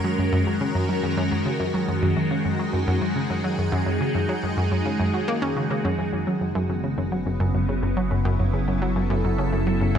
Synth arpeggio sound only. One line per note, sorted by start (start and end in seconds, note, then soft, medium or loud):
0.04 0.15 F#3 medium
0.19 0.29 F#2 medium
0.33 0.43 F#2 loud
0.47 0.57 F#2 medium
0.61 0.71 C#3 medium
0.75 0.85 F#2 medium
0.89 0.99 F#3 medium
1.03 1.13 F#2 medium
1.17 1.28 F#2 loud
1.32 1.42 F#2 medium
1.46 1.56 C#3 medium
1.60 1.70 F#2 medium
1.74 1.84 F#3 medium
1.88 1.98 F#2 medium
2.02 2.13 F#2 loud
2.17 2.27 F#2 medium
2.31 2.41 C#3 medium
2.45 2.55 F#2 medium
2.59 2.69 F#3 medium
2.73 2.83 F#2 medium
2.87 2.98 F#2 loud
3.02 3.12 F#2 medium
3.16 3.26 C#3 medium
3.30 3.40 F#2 medium
3.44 3.54 F#3 medium
3.58 3.68 F#2 medium
3.72 3.82 F#2 loud
3.86 3.97 F#2 medium
4.01 4.11 C#3 medium
4.15 4.25 F#2 medium
4.29 4.39 F#3 medium
4.43 4.53 F#2 medium
4.57 4.67 F#2 medium
4.71 4.82 F#2 medium
4.86 4.96 C#3 medium
5.00 5.10 F#2 medium
5.14 5.24 F#3 medium
5.28 5.38 A#3 loud
5.42 5.56 C#4 loud
5.56 5.66 C#3 medium
5.70 5.81 C#3 medium
5.85 5.95 F#2 loud
5.99 6.12 F#2 medium
6.13 6.23 F#2 medium
6.27 6.37 F#3 medium
6.41 6.51 F#2 medium
6.55 6.66 F#2 loud
6.70 6.80 F#2 medium
6.84 6.94 C#3 medium
6.98 7.08 F#2 medium
7.12 7.22 F#3 medium
7.26 7.36 F#2 medium
7.40 7.50 F#2 loud
7.54 7.65 F#2 medium
7.69 7.79 C#3 medium
7.83 7.93 F#2 medium
7.97 8.07 F#3 medium
8.11 8.21 F#2 medium
8.25 8.35 F#2 loud
8.39 8.50 F#2 medium
8.53 8.64 C#3 medium
8.68 8.78 F#2 medium
8.82 8.92 F#3 medium
8.96 9.06 F#2 medium
9.10 9.20 F#2 medium
9.24 9.34 F#2 medium
9.38 9.49 C#3 medium
9.52 9.63 F#2 medium
9.67 9.77 F#3 medium
9.81 9.91 F#2 medium
9.95 9.98 F#2 loud